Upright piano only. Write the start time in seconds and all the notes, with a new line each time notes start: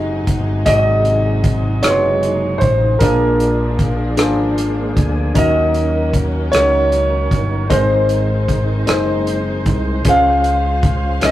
Already playing: G#2 D#4 F#4 G#4 C5 D#5
0.65 G#2 D#4 F#4 G#4 D5
0.74 D#5
1.83 D#4 F#4 G#4 B4
1.90 C6
3.01 A#2 D4 F4 G#4 A#4
4.17 D4 F4 G#4 C5
5.34 D#3 C#4 D#4 F#4 A#4
6.52 C#4 D#4 F#4 C#5
7.69 G#2 C4 D#4 G#4 A#4
7.77 C5
8.86 C4 D#4 G#4 C5
10.05 C#3 C#4 F4 G#4 C5
11.21 C#4 F4 G#4 C#5